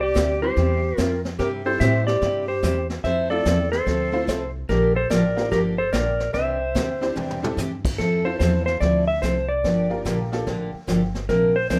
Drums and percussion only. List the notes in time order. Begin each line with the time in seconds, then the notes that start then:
0.16 kick, snare, hi-hat pedal
0.57 brush sweep, kick, snare
0.98 kick, snare, hi-hat pedal
1.25 snare
1.39 brush sweep, kick, snare
1.81 kick, snare, hi-hat pedal
2.07 snare
2.22 brush sweep, kick, snare
2.63 kick, snare, hi-hat pedal
2.90 snare
3.04 brush sweep, kick, snare
3.46 kick, snare, hi-hat pedal
3.73 snare
3.87 brush sweep, kick, snare
4.28 kick, snare, hi-hat pedal
4.69 brush sweep, kick, snare
5.11 kick, snare, hi-hat pedal
5.38 snare
5.52 brush sweep, kick, snare
5.93 kick, snare, hi-hat pedal
6.20 snare
6.34 brush sweep, kick, snare
6.75 kick, snare, hi-hat pedal
7.02 snare
7.17 mid tom
7.31 mid tom
7.44 mid tom
7.58 snare, hi-hat pedal
7.85 kick, crash
7.99 brush sweep, kick, snare
8.40 kick, snare, hi-hat pedal
8.67 snare
8.82 brush sweep, kick, snare
9.23 kick, snare, hi-hat pedal
9.64 brush sweep, kick, snare
10.06 kick, snare, hi-hat pedal
10.33 snare
10.47 brush sweep, kick, snare
10.88 kick, snare, hi-hat pedal
11.15 snare
11.29 brush sweep, kick, snare
11.70 kick, snare, hi-hat pedal